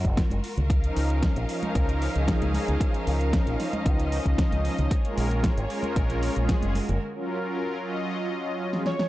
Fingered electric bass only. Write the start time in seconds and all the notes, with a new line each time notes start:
0.05 F#1
0.31 F#1
0.57 C#2
0.96 C#2
1.36 A#1
1.75 C#2
2.16 C#2
2.42 C#2
2.68 C#2
3.07 C#2
3.47 A#1
3.86 C#2
4.26 C#2
4.52 C#2
4.79 C#2
5.17 A#1
5.57 G#1
5.96 A#1
6.36 A#1
6.63 F#1
6.89 F#1